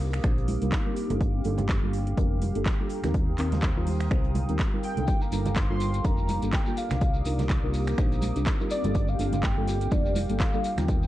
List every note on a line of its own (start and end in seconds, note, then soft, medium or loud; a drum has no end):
0.00 0.19 C2 medium
0.00 0.21 G3 medium
0.00 3.10 A#3 medium
0.00 1.99 C4 medium
0.00 0.21 D4 medium
0.00 0.21 D#4 medium
0.00 1.21 D#4 loud
0.00 0.22 F4 medium
0.00 3.92 G4 medium
0.00 0.22 A#4 loud
0.00 8.91 F5 medium
0.00 3.10 D6 medium
0.00 1.19 D#6 medium
0.00 open hi-hat medium
0.13 finger snap medium
0.13 closed hi-hat medium
0.24 0.55 A#1 medium
0.24 0.47 G3 medium
0.24 0.47 D4 medium
0.24 0.47 D#4 medium
0.24 0.47 F4 medium
0.24 0.47 C5 loud
0.24 finger snap medium
0.24 kick loud
0.24 closed hi-hat medium
0.38 closed hi-hat soft
0.48 closed hi-hat medium
0.48 open hi-hat loud
0.48 high conga medium
0.61 0.69 C2 medium
0.61 0.83 G3 medium
0.61 0.83 D4 medium
0.61 0.83 D#4 medium
0.61 0.83 F4 medium
0.61 0.83 A#4 medium
0.61 closed hi-hat medium
0.61 closed hi-hat soft
0.72 kick loud
0.72 snare loud
0.72 clap loud
0.72 closed hi-hat medium
0.72 closed hi-hat soft
0.86 1.06 G3 medium
0.86 1.06 D4 medium
0.86 1.06 D#4 medium
0.86 1.06 F4 medium
0.86 1.06 A#4 medium
0.96 closed hi-hat medium
0.96 open hi-hat medium
1.10 1.40 G1 medium
1.10 1.42 G3 medium
1.10 1.42 A#3 medium
1.10 1.42 D4 medium
1.10 1.43 F4 medium
1.10 1.43 A4 medium
1.10 closed hi-hat medium
1.10 closed hi-hat soft
1.10 high conga medium
1.10 low conga medium
1.21 6.97 G5 medium
1.21 kick loud
1.21 closed hi-hat medium
1.44 1.76 G1 medium
1.44 1.67 G3 medium
1.44 1.68 A#3 medium
1.44 1.68 D4 medium
1.44 1.68 F4 medium
1.44 1.68 A4 loud
1.44 closed hi-hat medium
1.44 open hi-hat loud
1.58 closed hi-hat medium
1.58 closed hi-hat soft
1.58 high conga medium
1.58 low conga medium
1.69 kick loud
1.69 snare loud
1.69 clap loud
1.69 closed hi-hat medium
1.83 2.12 G1 medium
1.83 2.15 G3 medium
1.83 2.15 A#3 medium
1.83 2.15 D4 medium
1.83 2.15 F4 medium
1.83 2.15 A4 loud
1.93 closed hi-hat medium
1.93 open hi-hat medium
2.07 3.92 A#5 medium
2.07 closed hi-hat medium
2.17 2.49 F1 loud
2.17 2.40 G3 loud
2.17 2.40 A#3 medium
2.17 2.40 D4 medium
2.17 2.40 F4 medium
2.17 2.40 A#4 loud
2.17 kick loud
2.17 closed hi-hat medium
2.17 closed hi-hat loud
2.42 closed hi-hat medium
2.42 open hi-hat loud
2.42 high conga medium
2.55 2.63 G1 medium
2.55 2.76 G3 medium
2.55 2.76 A#3 medium
2.55 2.76 D4 medium
2.55 2.76 F4 medium
2.55 2.77 A4 medium
2.55 closed hi-hat medium
2.66 kick loud
2.66 snare loud
2.66 clap loud
2.66 closed hi-hat soft
2.66 closed hi-hat medium
2.79 3.00 G3 medium
2.79 3.00 A#3 medium
2.79 3.00 D4 medium
2.79 3.00 F4 medium
2.79 3.00 A4 medium
2.89 closed hi-hat medium
2.89 open hi-hat medium
3.03 3.33 D#2 medium
3.03 3.36 G3 medium
3.03 3.36 C4 medium
3.03 3.36 D#4 medium
3.03 3.36 F4 medium
3.03 3.36 A#4 medium
3.03 finger snap medium
3.03 snare soft
3.03 closed hi-hat medium
3.03 high conga medium
3.03 low conga medium
3.14 5.08 D#4 medium
3.14 5.06 C5 medium
3.14 5.06 D#6 medium
3.14 kick loud
3.14 closed hi-hat medium
3.38 3.70 D#2 medium
3.38 3.61 G3 medium
3.38 3.61 C4 medium
3.38 3.61 D#4 medium
3.38 3.61 F4 medium
3.38 3.61 A#4 loud
3.38 clap medium
3.38 closed hi-hat medium
3.38 open hi-hat loud
3.52 snare soft
3.52 closed hi-hat medium
3.52 high conga medium
3.52 low conga medium
3.59 5.86 A#4 medium
3.59 kick loud
3.59 clap loud
3.59 closed hi-hat medium
3.63 snare loud
3.76 4.06 D#2 medium
3.76 4.08 G3 medium
3.76 4.09 C4 medium
3.76 4.09 D#4 medium
3.76 4.09 F4 medium
3.76 4.09 A#4 loud
3.87 open hi-hat loud
3.87 open hi-hat medium
3.87 high conga medium
4.00 5.86 F5 medium
4.00 5.86 G5 medium
4.00 finger snap medium
4.00 closed hi-hat medium
4.11 4.42 C2 medium
4.11 4.34 G3 loud
4.11 4.34 C4 medium
4.11 4.34 D#4 medium
4.11 4.34 F4 medium
4.11 4.34 C5 loud
4.11 finger snap medium
4.11 kick loud
4.11 closed hi-hat medium
4.11 closed hi-hat soft
4.24 closed hi-hat soft
4.35 closed hi-hat medium
4.35 open hi-hat loud
4.35 high conga medium
4.35 low conga medium
4.49 4.56 D#2 medium
4.49 4.70 G3 medium
4.49 4.70 C4 medium
4.49 4.70 D#4 medium
4.49 4.70 F4 medium
4.49 4.70 A#4 medium
4.49 closed hi-hat medium
4.49 closed hi-hat soft
4.59 kick loud
4.59 snare loud
4.59 clap loud
4.59 closed hi-hat medium
4.59 closed hi-hat soft
4.73 4.93 G3 medium
4.73 4.93 C4 medium
4.73 4.93 D#4 medium
4.73 4.93 F4 medium
4.73 4.93 A#4 medium
4.83 5.23 G5 loud
4.83 closed hi-hat medium
4.83 open hi-hat medium
4.97 5.05 C2 medium
4.97 5.29 G3 medium
4.97 5.29 A#3 medium
4.97 5.30 D4 medium
4.97 5.30 F4 medium
4.97 5.30 A4 medium
4.97 closed hi-hat medium
4.97 closed hi-hat soft
4.97 high conga medium
4.97 low conga medium
5.07 10.84 A#3 medium
5.07 11.07 G4 medium
5.07 10.84 D6 medium
5.07 kick loud
5.07 closed hi-hat medium
5.07 shekere soft
5.21 5.58 A#5 loud
5.21 shekere soft
5.32 5.63 G1 medium
5.32 5.55 G3 medium
5.32 5.55 A#3 medium
5.32 5.55 D4 medium
5.32 5.55 F4 medium
5.32 5.55 A4 loud
5.32 closed hi-hat medium
5.32 open hi-hat loud
5.32 shekere loud
5.46 closed hi-hat medium
5.46 closed hi-hat soft
5.46 high conga medium
5.46 low conga medium
5.46 shekere soft
5.56 5.70 C6 loud
5.56 kick loud
5.56 snare loud
5.56 clap loud
5.56 closed hi-hat medium
5.56 closed hi-hat soft
5.56 shekere medium
5.70 5.99 G1 medium
5.70 6.02 G3 medium
5.70 6.02 A#3 medium
5.70 6.02 D4 medium
5.70 6.02 F4 medium
5.70 6.02 A4 loud
5.70 6.06 C6 loud
5.80 closed hi-hat medium
5.80 open hi-hat medium
5.80 shekere medium
5.94 7.80 A#5 medium
5.94 closed hi-hat medium
5.94 shekere soft
6.04 6.36 F1 medium
6.04 6.27 G3 loud
6.04 6.27 A#3 medium
6.04 6.27 D4 medium
6.04 6.27 F4 medium
6.04 6.28 A#4 loud
6.04 6.55 A#5 loud
6.04 kick loud
6.04 closed hi-hat soft
6.04 closed hi-hat loud
6.04 shekere medium
6.18 shekere soft
6.29 closed hi-hat medium
6.29 open hi-hat loud
6.29 high conga medium
6.29 shekere loud
6.42 6.50 G1 medium
6.42 6.63 G3 medium
6.42 6.63 A#3 medium
6.42 6.63 D4 medium
6.42 6.64 F4 medium
6.42 6.64 A4 medium
6.42 closed hi-hat medium
6.42 shekere soft
6.53 6.66 G5 loud
6.53 kick loud
6.53 snare loud
6.53 clap loud
6.53 closed hi-hat medium
6.53 closed hi-hat soft
6.53 shekere soft
6.66 6.87 G3 medium
6.66 6.87 A#3 medium
6.66 6.87 D4 medium
6.66 6.87 F4 medium
6.66 6.87 A4 medium
6.66 6.79 G5 medium
6.66 shekere soft
6.77 7.74 F5 medium
6.77 closed hi-hat medium
6.77 open hi-hat medium
6.77 shekere medium
6.90 7.20 C2 medium
6.90 7.23 G3 medium
6.90 7.23 D4 medium
6.90 7.23 D#4 medium
6.90 7.23 F4 medium
6.90 7.23 A#4 medium
6.90 finger snap medium
6.90 snare soft
6.90 closed hi-hat medium
6.90 high conga medium
6.90 low conga medium
6.90 shekere soft
7.01 9.73 C4 medium
7.01 8.93 D#6 medium
7.01 kick loud
7.01 closed hi-hat soft
7.01 closed hi-hat medium
7.01 shekere soft
7.14 shekere soft
7.25 7.57 C2 medium
7.25 7.48 G3 medium
7.25 7.48 D4 medium
7.25 7.48 D#4 medium
7.25 7.48 F4 medium
7.25 7.49 A#4 loud
7.25 closed hi-hat medium
7.25 open hi-hat loud
7.25 shekere loud
7.39 snare soft
7.39 closed hi-hat medium
7.39 high conga medium
7.39 low conga medium
7.39 shekere soft
7.49 kick loud
7.49 snare loud
7.49 clap loud
7.49 closed hi-hat medium
7.49 shekere medium
7.63 7.93 C2 medium
7.63 7.95 G3 medium
7.63 7.96 D4 medium
7.63 7.96 D#4 medium
7.63 7.96 F4 medium
7.63 7.96 A#4 loud
7.74 open hi-hat medium
7.74 shekere medium
7.87 finger snap medium
7.87 closed hi-hat medium
7.87 shekere soft
7.98 8.29 A#1 loud
7.98 8.21 G3 loud
7.98 8.21 D4 medium
7.98 8.21 D#4 medium
7.98 8.21 F4 medium
7.98 8.21 C5 loud
7.98 finger snap medium
7.98 kick loud
7.98 closed hi-hat medium
7.98 shekere medium
8.12 closed hi-hat soft
8.12 shekere soft
8.22 closed hi-hat medium
8.22 open hi-hat loud
8.22 high conga medium
8.22 shekere medium
8.36 8.43 C2 medium
8.36 8.57 G3 medium
8.36 8.57 D4 medium
8.36 8.57 D#4 medium
8.36 8.57 F4 medium
8.36 8.57 A#4 medium
8.36 closed hi-hat soft
8.36 closed hi-hat medium
8.36 shekere soft
8.46 kick loud
8.46 snare loud
8.46 clap loud
8.46 closed hi-hat medium
8.46 shekere soft
8.60 8.80 G3 medium
8.60 8.80 D4 medium
8.60 8.80 D#4 medium
8.60 8.80 F4 medium
8.60 8.81 A#4 medium
8.60 shekere soft
8.70 9.10 D5 loud
8.70 closed hi-hat medium
8.70 open hi-hat medium
8.70 shekere medium
8.84 9.14 G1 medium
8.84 9.16 G3 medium
8.84 9.17 A#3 medium
8.84 9.17 D4 medium
8.84 9.17 F4 medium
8.84 9.17 A4 medium
8.84 closed hi-hat soft
8.84 closed hi-hat medium
8.84 high conga medium
8.84 low conga medium
8.84 shekere soft
8.95 11.07 F5 medium
8.95 11.07 G5 medium
8.95 kick loud
8.95 closed hi-hat medium
8.95 closed hi-hat loud
8.95 shekere soft
9.08 9.45 F5 loud
9.08 shekere soft
9.19 9.50 G1 medium
9.19 9.42 G3 loud
9.19 9.42 A#3 medium
9.19 9.42 D4 medium
9.19 9.42 F4 medium
9.19 9.42 A4 loud
9.19 closed hi-hat medium
9.19 open hi-hat loud
9.19 shekere medium
9.32 closed hi-hat soft
9.32 closed hi-hat medium
9.32 high conga medium
9.32 low conga medium
9.32 shekere soft
9.42 9.93 G5 loud
9.42 kick loud
9.42 snare loud
9.42 clap loud
9.42 closed hi-hat medium
9.42 shekere soft
9.47 11.07 G5 medium
9.57 9.86 G1 medium
9.57 9.89 G3 loud
9.57 9.89 A#3 medium
9.57 9.89 D4 medium
9.57 9.89 F4 medium
9.57 9.89 A4 loud
9.67 snare medium
9.67 closed hi-hat medium
9.67 open hi-hat medium
9.67 shekere medium
9.81 closed hi-hat medium
9.81 shekere soft
9.91 10.23 F1 loud
9.91 10.14 G3 loud
9.91 10.14 A#3 medium
9.91 10.14 D4 medium
9.91 10.14 F4 loud
9.91 10.42 D5 loud
9.91 kick loud
9.91 closed hi-hat medium
9.91 shekere medium
10.06 shekere soft
10.16 closed hi-hat medium
10.16 open hi-hat loud
10.16 high conga loud
10.16 shekere medium
10.29 10.37 G1 medium
10.29 10.50 G3 medium
10.29 10.50 A#3 medium
10.29 10.51 D4 medium
10.29 10.51 F4 medium
10.29 10.51 A4 medium
10.29 closed hi-hat medium
10.29 shekere soft
10.40 10.80 F5 loud
10.40 kick loud
10.40 snare loud
10.40 clap loud
10.40 closed hi-hat medium
10.40 closed hi-hat loud
10.40 shekere soft
10.53 10.74 G3 medium
10.53 10.74 A#3 medium
10.53 10.74 D4 medium
10.53 10.74 F4 medium
10.53 10.74 A4 medium
10.53 shekere soft
10.64 closed hi-hat medium
10.64 open hi-hat medium
10.64 shekere medium
10.78 11.07 D#2 medium
10.78 11.07 G3 medium
10.78 11.07 C4 medium
10.78 11.07 D#4 medium
10.78 11.07 F4 medium
10.78 11.07 A#4 medium
10.78 11.07 G5 loud
10.78 finger snap medium
10.78 snare soft
10.78 closed hi-hat medium
10.78 high conga medium
10.78 low conga medium
10.78 shekere soft
10.88 11.07 C5 medium
10.88 11.07 D#6 loud
10.88 kick loud
10.88 closed hi-hat medium
10.88 shekere soft
11.03 shekere soft